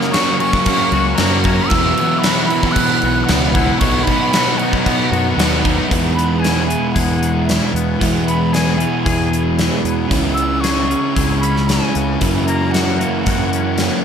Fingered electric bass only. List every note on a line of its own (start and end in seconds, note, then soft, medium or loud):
0.92 1.13 C#2 medium
1.19 1.60 F#2 loud
1.72 1.92 E2 loud
3.03 3.23 B1 medium
3.29 3.70 C#2 loud
3.81 4.02 B1 medium
5.12 5.33 F#2 loud
5.37 5.79 D#2 medium
5.92 6.74 E2 medium
6.96 7.58 E2 medium
7.74 7.95 E2 medium
8.01 8.84 E2 medium
9.06 9.69 E2 medium
9.85 10.05 E2 medium
10.11 10.94 C#2 medium
11.17 11.79 C#2 medium
11.95 12.16 C#2 medium
12.21 13.04 F#2 medium
13.27 13.89 F#2 medium